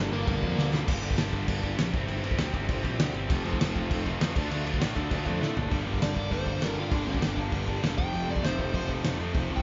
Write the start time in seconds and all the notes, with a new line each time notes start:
Already playing: G2 D3 G3 A#3 D4
0.11 G1 G2 D3 G3 A#3 D4 A#4
0.26 G1 G2 D3 G3 A#3 D4, kick, crash
0.42 F2 G2 D3 G3 A#3 D4, kick
0.56 D2 G2 D3 G3 A#3 D4, snare
0.72 G2 D3 G3 A#3 D4, snare
0.86 G1 G2 D3 G3 A#3 D4 G4, kick, crash
1.02 G1 G2 D3 G3 A#3 D4 G4, crash
1.11 kick
1.16 G1 G2 D3 G3 A#3 D4 G4, snare, crash
1.32 G1 G2 D3 G3 A#3 D4 G4, kick, crash
1.46 G1 G2 D3 G3 A#3 D4 G4, kick, crash
1.62 G1 G2 D3 G3 A#3 D4 G4, kick, crash
1.77 A#1 G2 D3 G3 A#3 D4 G4, snare, crash
1.92 G1 C3 G3 C4 E4 G4, kick, crash
2.07 G1 C3 G3 C4 E4 G4, crash
2.23 G1 C3 G3 C4 E4 G4, crash
2.31 kick
2.38 D2 C3 G3 C4 E4 G4, snare, crash
2.53 G1 C3 G3 C4 E4 G4, kick, crash
2.68 G1 C3 G3 C4 E4 G4, kick, crash
2.82 A#1 C3 G3 C4 E4 G4, kick, crash
2.99 D2 C3 G3 C4 E4 G4, snare, crash
3.13 G1 C3 G3 C4 E4 G4, crash
3.29 F1 F2 C3 F3 A3 C4 F4, kick, crash
3.44 F1 F2 C3 F3 A3 C4 F4, crash
3.53 kick
3.59 F1 F2 C3 F3 A3 C4 F4, snare, crash
3.75 F1 F2 C3 F3 A3 C4 F4, kick, crash
3.89 F1 F2 C3 F3 A3 C4 F4, kick, crash
4.05 F1 F2 C3 F3 A3 C4 F4, kick, crash
4.20 E2 F2 C3 F3 A3 C4 F4, snare, crash
4.36 D2 D3 A3 D4 F4, kick, crash
4.51 D2 D3 A3 D4 F4, crash
4.66 D2 D3 A3 D4 F4, crash
4.74 kick
4.80 A2 D3 A3 D4 F4, snare, crash
4.95 D2 D3 A3 D4 F4, kick, crash
5.10 D2 D3 A3 D4 F4, kick, crash
5.26 F2 D3 A3 D4 F4, kick, crash
5.40 A2 D3 A3 D4 F4, snare
5.55 F#1 D3 A3 D4 F4, floor tom
5.70 G1 G2 D3 G3 A#3 D4, kick, open hi-hat
5.84 G1 G2 D3 G3 A#3 D4
5.94 kick
6.01 G1 G2 D3 G3 A#3 D4 D5, snare, open hi-hat
6.15 G1 G2 D3 G3 A#3 D4, kick
6.29 G1 G2 D3 G3 A#3 D4 C5, kick, open hi-hat
6.45 G2 D3 G3 A#3 D4, kick
6.59 G1 G2 D3 G3 A#3 D4, snare, open hi-hat
6.64 A#4
6.75 G2 D3 G3 A#3 D4
6.79 F4
6.89 G1 G2 D3 G3 A#3 D4, kick, open hi-hat
6.95 D4
7.05 D2 G2 D3 G3 A#3 D4
7.14 kick
7.21 G1 G2 D3 G3 A#3 D4, snare, open hi-hat
7.35 G2 D3 G3 A#3 D4, kick
7.51 G1 G2 D3 G3 A#3 D4, kick, open hi-hat
7.67 G2 D3 G3 A#3 D4, kick
7.82 E1 G2 D3 G3 A#3 D4, snare, open hi-hat
7.97 F1 F2 C3 F3 A3 C4 G5, kick
8.12 F1 F2 C3 F3 A3 C4, open hi-hat
8.28 F1 F2 C3 F3 A3 C4 D5
8.36 kick
8.44 F1 F2 C3 F3 A3 C4 C5, snare, open hi-hat
8.58 F1 F2 C3 F3 A3 C4 C5, kick
8.74 F1 F2 C3 F3 A3 C4, kick, open hi-hat
8.89 F2 C3 F3 A3 C4, kick
9.04 F1 F2 C3 F3 A3 C4, snare, open hi-hat
9.20 F2 C3 F3 A3 C4
9.35 F1 F2 C3 F3 A3 C4, kick, open hi-hat
9.50 C2 F2 C3 F3 A3 C4
9.56 G5, kick